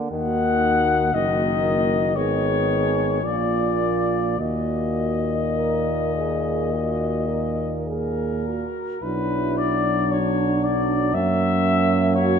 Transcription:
0.11 tuba D#2, trombone D#3, euphonium A#3, french horn section F#4, flugelhorn F#5
1.13 tuba F#1, trombone D#3, euphonium A#3, french horn section F#4, flugelhorn D#5
2.15 tuba G#1, trombone D#3, euphonium B3, french horn section G#4, flugelhorn C#5
3.22 tuba A#1, trombone A#2, euphonium A#3, french horn section F4, flugelhorn D5
4.38 tuba D#2, trombone A#2, euphonium A#3, french horn section F#4, flugelhorn D#5
5.56 french horn section A#4
6.13 french horn section G#4
6.73 french horn section F#4
7.29 french horn section A#4
7.87 french horn section G#4, flugelhorn A#4
8.47 french horn section F#4
9.02 tuba B1, trombone F#3, euphonium D4, french horn section E4, flugelhorn B4
9.57 flugelhorn D5
10.10 french horn section D4, flugelhorn C#5
10.64 flugelhorn D5
11.14 tuba F#2, euphonium A#3, french horn section C#4, flugelhorn E5
12.16 french horn section F#4, flugelhorn C#5

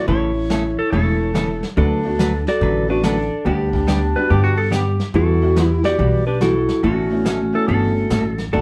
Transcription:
0.08 upright bass A1, hollow-body jazz guitar C#3 E3 A3 C#4 A4, electric slide guitar E4 C#5, brush sweep
0.50 hollow-body jazz guitar C#3 E3 A3 C#4 A4, snare, hi-hat pedal
0.79 electric slide guitar A4
0.91 upright bass E1, hollow-body jazz guitar C#3 E3 A3 C#4 A4, honky-tonk piano E3 A3 C#4 E4, electric slide guitar A4, brush sweep
1.33 hollow-body jazz guitar C#3 E3 A3 C#4 A4, honky-tonk piano E3 A3 C#4 E4, snare, hi-hat pedal
1.63 snare
1.77 upright bass D2, hollow-body jazz guitar D3 F#3 A3 D4 F#4 B4, electric slide guitar D4 A4, clarinet D4, brush sweep
2.03 honky-tonk piano A3 B3 D4 F#4
2.19 hollow-body jazz guitar D3 F#3 A3 D4 F#4 B4, snare, hi-hat pedal
2.47 electric slide guitar F#4 D5, clarinet A4, snare
2.61 upright bass A1, hollow-body jazz guitar D3 F#3 A3 D4 F#4 B4, brush sweep
2.88 honky-tonk piano A3 B3 D4 F#4, electric slide guitar D4 B4, clarinet F#4
3.03 hollow-body jazz guitar D3 F#3 A3 D4 F#4 B4, electric slide guitar D4 A4, clarinet D4, snare, hi-hat pedal
3.45 upright bass D2, hollow-body jazz guitar D3 G3 B3 D4 G4, electric slide guitar B3 G4, clarinet D4, brush sweep
3.73 honky-tonk piano G3 B3 D4 G4, kick
3.87 hollow-body jazz guitar D3 G3 B3 D4 G4, snare, hi-hat pedal
4.15 honky-tonk piano G3 B3 D4 F#4, electric slide guitar B4
4.30 upright bass G2, hollow-body jazz guitar D3 G3 B3 D4 G4, electric slide guitar G4, brush sweep
4.44 electric slide guitar F#4
4.57 electric slide guitar A4
4.71 hollow-body jazz guitar D3 G3 B3 D4 G4, electric slide guitar G4, snare, hi-hat pedal
5.00 snare
5.14 upright bass E2, hollow-body jazz guitar E3 G3 B3 F#4, electric slide guitar E4 A4, clarinet F#4, brush sweep
5.41 honky-tonk piano G3 B3 E4 F#4
5.56 hollow-body jazz guitar E3 G3 B3 F#4, snare, hi-hat pedal
5.65 clarinet E4, electric slide guitar G4
5.83 honky-tonk piano G3 B3 E4 F#4, electric slide guitar F#4 D5, clarinet G4, snare
5.98 upright bass B1, hollow-body jazz guitar E3 G3 B3 F#4, brush sweep
6.27 electric slide guitar D4 B4, clarinet G4
6.41 hollow-body jazz guitar E3 G3 B3 F#4, electric slide guitar E4 A4, clarinet F#4, snare, hi-hat pedal
6.69 snare
6.83 upright bass A1, hollow-body jazz guitar B2 E3 A3 C#4 A4, electric slide guitar A3 F#4, clarinet C#4, brush sweep
7.10 honky-tonk piano A3 B3 C#4 E4
7.25 hollow-body jazz guitar B2 E3 A3 C#4 A4, snare, hi-hat pedal
7.53 honky-tonk piano A3 B3 C#4 E4, electric slide guitar A4
7.68 upright bass G1, hollow-body jazz guitar B2 E3 A3 C#4 A4, electric slide guitar A4, brush sweep
8.10 upright bass A1, hollow-body jazz guitar B2 E3 A3 C#4 A4, snare, hi-hat pedal
8.38 snare
8.52 upright bass B1, hollow-body jazz guitar B2 F#3 A3 D4 F#4, clarinet D4, electric slide guitar D4 A4, brush sweep

